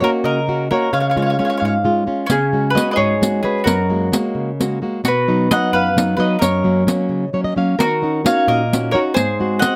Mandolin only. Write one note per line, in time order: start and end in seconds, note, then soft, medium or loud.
0.04 0.09 A#4 medium
0.25 0.67 A#4 medium
0.71 0.91 A#4 medium
0.94 0.99 C#5 medium
1.00 1.07 C#5 soft
1.11 1.16 C#5 soft
1.17 1.21 C#5 soft
1.22 1.29 C#5 soft
1.30 1.37 C#5 soft
1.39 1.44 C#5 soft
1.45 1.49 C#5 soft
1.50 1.56 C#5 soft
1.57 1.64 C#5 soft
1.65 1.73 C#5 soft
2.26 2.72 C#4 medium
2.70 2.88 B4 medium
2.91 2.98 B4 medium
2.96 3.41 G#4 medium
3.43 3.64 G#4 medium
3.64 4.14 F#4 medium
5.05 5.48 F#4 medium
5.51 5.71 D#5 medium
5.73 6.15 B4 medium
6.17 6.38 B4 medium
6.39 6.88 A#4 medium
7.80 8.23 F#4 medium
8.26 8.47 C#5 medium
8.48 8.90 A#4 medium
8.91 8.98 A#4 medium
9.14 9.58 G#4 medium
9.59 9.76 D#5 medium